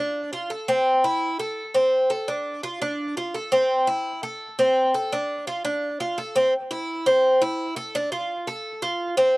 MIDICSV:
0, 0, Header, 1, 2, 480
1, 0, Start_track
1, 0, Key_signature, 0, "minor"
1, 0, Tempo, 353982
1, 1172, Time_signature, 4, 2, 24, 8
1, 12711, End_track
2, 0, Start_track
2, 0, Title_t, "Cuban tres"
2, 0, Program_c, 0, 25
2, 0, Note_on_c, 0, 62, 78
2, 434, Note_off_c, 0, 62, 0
2, 444, Note_on_c, 0, 65, 66
2, 680, Note_off_c, 0, 65, 0
2, 680, Note_on_c, 0, 69, 62
2, 918, Note_off_c, 0, 69, 0
2, 926, Note_on_c, 0, 60, 85
2, 1395, Note_off_c, 0, 60, 0
2, 1412, Note_on_c, 0, 64, 67
2, 1879, Note_off_c, 0, 64, 0
2, 1891, Note_on_c, 0, 69, 65
2, 2359, Note_off_c, 0, 69, 0
2, 2366, Note_on_c, 0, 60, 76
2, 2837, Note_off_c, 0, 60, 0
2, 2847, Note_on_c, 0, 69, 71
2, 3085, Note_off_c, 0, 69, 0
2, 3092, Note_on_c, 0, 62, 68
2, 3561, Note_off_c, 0, 62, 0
2, 3572, Note_on_c, 0, 65, 71
2, 3808, Note_off_c, 0, 65, 0
2, 3818, Note_on_c, 0, 62, 77
2, 4285, Note_off_c, 0, 62, 0
2, 4300, Note_on_c, 0, 65, 73
2, 4533, Note_off_c, 0, 65, 0
2, 4535, Note_on_c, 0, 69, 67
2, 4771, Note_off_c, 0, 69, 0
2, 4772, Note_on_c, 0, 60, 86
2, 5243, Note_off_c, 0, 60, 0
2, 5251, Note_on_c, 0, 64, 72
2, 5723, Note_off_c, 0, 64, 0
2, 5736, Note_on_c, 0, 69, 68
2, 6205, Note_off_c, 0, 69, 0
2, 6221, Note_on_c, 0, 60, 80
2, 6688, Note_off_c, 0, 60, 0
2, 6704, Note_on_c, 0, 69, 73
2, 6937, Note_off_c, 0, 69, 0
2, 6950, Note_on_c, 0, 62, 77
2, 7413, Note_off_c, 0, 62, 0
2, 7420, Note_on_c, 0, 65, 68
2, 7650, Note_off_c, 0, 65, 0
2, 7656, Note_on_c, 0, 62, 80
2, 8125, Note_off_c, 0, 62, 0
2, 8139, Note_on_c, 0, 65, 72
2, 8374, Note_off_c, 0, 65, 0
2, 8377, Note_on_c, 0, 69, 72
2, 8613, Note_off_c, 0, 69, 0
2, 8618, Note_on_c, 0, 60, 83
2, 8853, Note_off_c, 0, 60, 0
2, 9096, Note_on_c, 0, 64, 74
2, 9563, Note_off_c, 0, 64, 0
2, 9577, Note_on_c, 0, 60, 90
2, 10043, Note_off_c, 0, 60, 0
2, 10055, Note_on_c, 0, 64, 80
2, 10522, Note_off_c, 0, 64, 0
2, 10528, Note_on_c, 0, 69, 82
2, 10765, Note_off_c, 0, 69, 0
2, 10780, Note_on_c, 0, 62, 85
2, 11004, Note_off_c, 0, 62, 0
2, 11009, Note_on_c, 0, 65, 75
2, 11477, Note_off_c, 0, 65, 0
2, 11491, Note_on_c, 0, 69, 74
2, 11956, Note_off_c, 0, 69, 0
2, 11963, Note_on_c, 0, 65, 80
2, 12432, Note_off_c, 0, 65, 0
2, 12438, Note_on_c, 0, 60, 92
2, 12711, Note_off_c, 0, 60, 0
2, 12711, End_track
0, 0, End_of_file